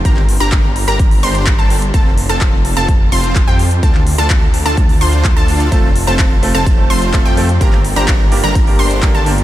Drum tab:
RD |----------------|----------------|----------------|x---x---x---x---|
HH |x-oxx-oxxooxx-ox|x-oxx-oxx-oxx-ox|x-oxx-oxxooxx-ox|x-oxx-oxx-oxx-ox|
CP |-x--x-------x---|----x-------x---|-x--x-------x---|----x-------x---|
BD |o---o---o---o---|o---o---o---o---|o---o---o---o---|o---o---o---o---|

RD |x---x---x---x---|
HH |x-oxx-oxxooxx-ox|
CP |-x--x-------x---|
BD |o---o---o---o---|